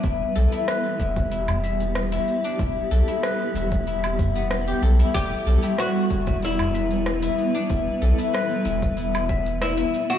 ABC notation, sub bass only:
X:1
M:4/4
L:1/8
Q:1/4=94
K:Em
V:1 name="Sub bass" clef=bass
E,,, B,,, z E,,,4 z | E,,, B,,, z E,,,4 B,,, | E,,, B,,, z E,,,4 z | E,,, B,,, z E,,,4 z |]